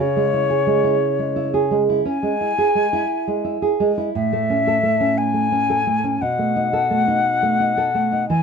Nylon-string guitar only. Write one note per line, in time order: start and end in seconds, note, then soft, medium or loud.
0.00 2.02 C#3 medium
0.16 0.43 G#3 soft
0.33 0.60 E4 medium
0.50 0.77 G#4 soft
0.67 0.94 G#3 medium
0.84 1.35 E4 medium
1.19 1.47 G#3 soft
1.36 1.64 E4 medium
1.54 1.82 G#4 medium
1.71 1.99 G#3 soft
1.89 2.17 E4 medium
2.05 2.33 C#4 medium
2.23 2.50 G#3 soft
2.41 2.68 E4 medium
2.58 2.85 G#4 medium
2.75 3.02 G#3 medium
2.93 3.43 E4 medium
3.27 3.56 G#3 soft
3.44 3.73 E4 medium
3.62 3.91 G#4 medium
3.80 4.08 G#3 medium
3.98 4.15 E4 medium
4.15 6.18 A2 medium
4.33 4.60 A3 medium
4.50 4.77 C#4 medium
4.67 4.94 A4 medium
4.83 5.11 A3 medium
5.00 5.51 C#4 medium
5.34 5.62 A3 soft
5.52 5.80 C#4 medium
5.70 5.97 A4 medium
5.87 6.15 A3 soft
6.04 6.22 C#4 soft
6.22 8.27 B2 medium
6.39 6.67 A3 medium
6.56 6.84 D#4 medium
6.73 7.01 A4 medium
6.90 7.19 A3 soft
7.08 7.59 D#4 medium
7.42 7.71 A3 medium
7.60 7.88 D#4 medium
7.77 8.06 A4 medium
7.95 8.23 A3 medium
8.12 8.30 D#4 soft
8.30 8.43 E3 medium